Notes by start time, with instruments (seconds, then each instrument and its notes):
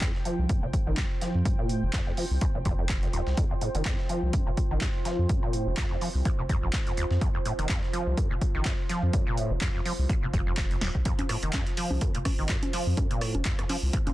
Already playing: ambient pad F4 C5 G5
0.01 acid bass F2, kick, snare, clap, closed hi-hat
0.15 snare
0.25 acid bass F3, closed hi-hat
0.39 sub bass C2
0.49 acid bass F2, kick, closed hi-hat
0.63 sub bass F1, acid bass A#2
0.73 kick, closed hi-hat
0.87 sub bass A1, acid bass D#3
0.97 acid bass F2, kick, snare, clap, closed hi-hat
1.21 acid bass F3, snare, closed hi-hat
1.35 sub bass F2
1.45 acid bass F2, kick, closed hi-hat
1.59 acid bass A#2
1.69 acid bass A2, closed hi-hat
1.83 sub bass F1, acid bass F1
1.93 acid bass F2, kick, snare, clap, closed hi-hat
2.07 acid bass F2
2.17 acid bass F3, open hi-hat
2.31 sub bass C2
2.41 acid bass D#2, kick, closed hi-hat
2.55 sub bass F1, acid bass A#2
2.65 sub bass F1, acid bass F2, kick, closed hi-hat
2.79 acid bass F2
2.89 kick, snare, clap, closed hi-hat
3.03 acid bass F2, closed hi-hat
3.13 sub bass D#1, acid bass D#2, closed hi-hat
3.27 sub bass C2, snare
3.37 acid bass F2, kick, closed hi-hat
3.51 acid bass F2
3.61 acid bass A2, closed hi-hat
3.75 sub bass F1, acid bass D#3, closed hi-hat
3.85 acid bass F2, kick, snare, clap, closed hi-hat
3.99 snare
4.09 acid bass F3, closed hi-hat
4.23 sub bass C2
4.33 acid bass F2, kick, closed hi-hat
4.47 sub bass F1, acid bass A#2
4.57 kick, closed hi-hat
4.71 sub bass A1, acid bass D#3
4.81 acid bass F2, kick, snare, clap, closed hi-hat
5.05 acid bass F3, snare, closed hi-hat
5.19 sub bass F2
5.29 acid bass F2, kick, closed hi-hat
5.43 acid bass A#2
5.53 acid bass A2, closed hi-hat
5.67 sub bass F1, acid bass F1
5.77 acid bass F2, kick, snare, clap, closed hi-hat
5.91 acid bass F2
6.01 acid bass F3, open hi-hat
6.15 sub bass C2
6.25 acid bass D#2, kick, closed hi-hat
6.39 sub bass F1, acid bass A#2
6.49 acid bass F2, kick, closed hi-hat
6.63 sub bass A1, acid bass F2
6.73 kick, snare, clap, closed hi-hat
6.87 acid bass F2, closed hi-hat
6.97 acid bass D#2, closed hi-hat
7.11 sub bass F2, snare
7.21 acid bass F2, kick, closed hi-hat
7.35 acid bass F2
7.45 acid bass A2, closed hi-hat
7.59 sub bass F1, acid bass D#3, closed hi-hat
7.69 acid bass F2, kick, snare, clap, closed hi-hat
7.83 snare
7.93 acid bass F3, closed hi-hat
8.07 sub bass C2
8.17 acid bass F2, kick, closed hi-hat
8.31 sub bass F1, acid bass A#2
8.41 kick, closed hi-hat
8.55 sub bass A1, acid bass D#3
8.65 acid bass F2, kick, snare, clap, closed hi-hat
8.89 acid bass F3, snare, closed hi-hat
9.03 sub bass F2
9.13 acid bass F2, kick, closed hi-hat
9.27 acid bass A#2
9.37 acid bass A2, closed hi-hat
9.51 sub bass F1, acid bass F1
9.61 acid bass F2, kick, snare, clap, closed hi-hat
9.75 acid bass F2
9.85 acid bass F3, open hi-hat
9.99 sub bass C2
10.09 acid bass D#2, kick, closed hi-hat
10.23 sub bass F1, acid bass A#2
10.33 sub bass F1, acid bass F2, kick, closed hi-hat
10.47 acid bass F2
10.57 kick, snare, clap, closed hi-hat
10.71 acid bass F2, closed hi-hat
10.81 sub bass D#1, acid bass D#2, snare, closed hi-hat
10.95 sub bass C2, kick
11.05 acid bass F2, kick, closed hi-hat
11.19 acid bass F2, closed hi-hat, high conga
11.29 acid bass A2, cross-stick, closed hi-hat, open hi-hat
11.36 ambient pad A5
11.43 sub bass F1, acid bass D#3, closed hi-hat
11.53 acid bass F2, kick, snare, clap, closed hi-hat, high conga
11.67 snare, closed hi-hat
11.77 acid bass F3, closed hi-hat, open hi-hat
11.91 sub bass C2, high conga
12.01 acid bass F2, kick, closed hi-hat
12.15 sub bass F1, acid bass A#2, closed hi-hat
12.25 kick, cross-stick, closed hi-hat, open hi-hat, high conga
12.39 sub bass A1, acid bass D#3
12.49 acid bass F2, kick, snare, clap, closed hi-hat
12.63 closed hi-hat, high conga
12.73 acid bass F3, snare, closed hi-hat, open hi-hat
12.87 sub bass F2
12.97 acid bass F2, kick, closed hi-hat, high conga
13.11 acid bass A#2, closed hi-hat
13.21 acid bass A2, cross-stick, closed hi-hat, open hi-hat
13.35 sub bass F1, acid bass F1, closed hi-hat, high conga
13.45 acid bass F2, kick, snare, clap, closed hi-hat
13.59 acid bass F2, cross-stick, closed hi-hat
13.69 acid bass F3, open hi-hat, high conga
13.83 sub bass C2
13.93 acid bass D#2, kick, closed hi-hat
14.07 sub bass F1, acid bass A#2, closed hi-hat, high conga